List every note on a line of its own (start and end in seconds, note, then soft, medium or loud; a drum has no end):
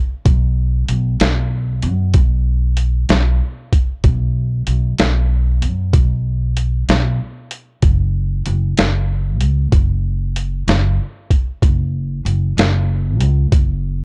0.25 0.84 B1 medium
0.25 kick loud
0.25 closed hi-hat medium
0.89 1.18 B1 medium
0.89 closed hi-hat medium
1.20 1.85 B1 medium
1.20 snare loud
1.20 closed hi-hat medium
1.83 2.12 F#2 medium
1.83 closed hi-hat medium
2.14 3.05 B1 medium
2.14 kick medium
2.14 closed hi-hat medium
2.77 closed hi-hat medium
3.09 3.38 B1 medium
3.09 snare loud
3.09 closed hi-hat medium
3.72 kick medium
3.72 closed hi-hat medium
4.04 4.63 B1 medium
4.04 kick medium
4.04 closed hi-hat medium
4.67 4.97 B1 medium
4.67 closed hi-hat medium
4.99 5.63 B1 medium
4.99 snare medium
4.99 closed hi-hat medium
5.62 5.91 F#2 medium
5.62 closed hi-hat soft
5.93 6.84 B1 medium
5.93 kick loud
5.93 closed hi-hat medium
6.57 closed hi-hat medium
6.88 7.18 B1 medium
6.88 snare medium
6.88 closed hi-hat medium
7.51 closed hi-hat medium
7.82 8.42 F#1 medium
7.82 kick medium
7.82 closed hi-hat medium
8.46 8.76 F#1 medium
8.46 closed hi-hat medium
8.77 9.41 F#1 medium
8.77 snare medium
8.77 closed hi-hat medium
9.41 9.70 C#2 medium
9.41 closed hi-hat medium
9.73 10.64 F#1 medium
9.73 kick medium
9.73 closed hi-hat medium
10.36 closed hi-hat medium
10.67 10.97 F#1 medium
10.67 snare loud
10.67 closed hi-hat medium
11.31 kick medium
11.31 closed hi-hat soft
11.62 12.22 F#1 medium
11.62 kick medium
11.62 closed hi-hat medium
12.25 12.54 F#1 medium
12.25 closed hi-hat medium
12.57 13.20 F#1 medium
12.57 snare loud
12.57 closed hi-hat medium
13.20 13.49 C#2 medium
13.20 closed hi-hat medium
13.52 14.04 F#1 medium
13.52 kick medium
13.52 closed hi-hat medium